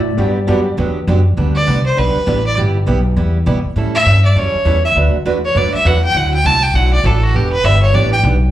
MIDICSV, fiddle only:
0, 0, Header, 1, 2, 480
1, 0, Start_track
1, 0, Key_signature, 1, "major"
1, 0, Tempo, 298507
1, 289, Time_signature, 4, 2, 24, 8
1, 13684, End_track
2, 0, Start_track
2, 0, Title_t, "Fiddle"
2, 0, Program_c, 0, 110
2, 2499, Note_on_c, 0, 74, 96
2, 2948, Note_off_c, 0, 74, 0
2, 2995, Note_on_c, 0, 72, 88
2, 3192, Note_on_c, 0, 71, 81
2, 3216, Note_off_c, 0, 72, 0
2, 3957, Note_off_c, 0, 71, 0
2, 3965, Note_on_c, 0, 74, 88
2, 4125, Note_off_c, 0, 74, 0
2, 6348, Note_on_c, 0, 76, 116
2, 6793, Note_off_c, 0, 76, 0
2, 6832, Note_on_c, 0, 74, 85
2, 7043, Note_on_c, 0, 73, 85
2, 7067, Note_off_c, 0, 74, 0
2, 7786, Note_off_c, 0, 73, 0
2, 7795, Note_on_c, 0, 76, 101
2, 7901, Note_off_c, 0, 76, 0
2, 8762, Note_on_c, 0, 73, 97
2, 8959, Note_on_c, 0, 74, 91
2, 8983, Note_off_c, 0, 73, 0
2, 9221, Note_off_c, 0, 74, 0
2, 9231, Note_on_c, 0, 76, 95
2, 9438, Note_on_c, 0, 78, 82
2, 9462, Note_off_c, 0, 76, 0
2, 9707, Note_off_c, 0, 78, 0
2, 9717, Note_on_c, 0, 79, 103
2, 9918, Note_on_c, 0, 78, 91
2, 9942, Note_off_c, 0, 79, 0
2, 10184, Note_off_c, 0, 78, 0
2, 10193, Note_on_c, 0, 79, 107
2, 10385, Note_on_c, 0, 81, 123
2, 10409, Note_off_c, 0, 79, 0
2, 10659, Note_on_c, 0, 79, 108
2, 10683, Note_off_c, 0, 81, 0
2, 10859, Note_on_c, 0, 78, 93
2, 10883, Note_off_c, 0, 79, 0
2, 11138, Note_off_c, 0, 78, 0
2, 11148, Note_on_c, 0, 74, 91
2, 11345, Note_on_c, 0, 69, 75
2, 11369, Note_off_c, 0, 74, 0
2, 11626, Note_on_c, 0, 66, 94
2, 11650, Note_off_c, 0, 69, 0
2, 11832, Note_on_c, 0, 67, 83
2, 11856, Note_off_c, 0, 66, 0
2, 12085, Note_off_c, 0, 67, 0
2, 12095, Note_on_c, 0, 71, 98
2, 12294, Note_on_c, 0, 76, 102
2, 12318, Note_off_c, 0, 71, 0
2, 12577, Note_off_c, 0, 76, 0
2, 12587, Note_on_c, 0, 73, 93
2, 12774, Note_on_c, 0, 74, 83
2, 12798, Note_off_c, 0, 73, 0
2, 13057, Note_off_c, 0, 74, 0
2, 13067, Note_on_c, 0, 79, 102
2, 13175, Note_off_c, 0, 79, 0
2, 13684, End_track
0, 0, End_of_file